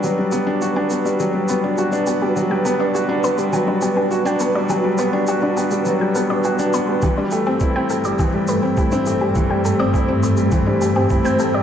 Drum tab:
SH |x-x-x-xxx-x-xxx-|x-x-x-xxx-x-xxx-|x-x-x-xxx-x-xxx-|x-x-x-xxx-x-xxx-|
BD |----------------|----------------|----------------|o---o---o---o---|

SH |x-x-x-xxx-x-xxx-|
BD |o---o---o---o---|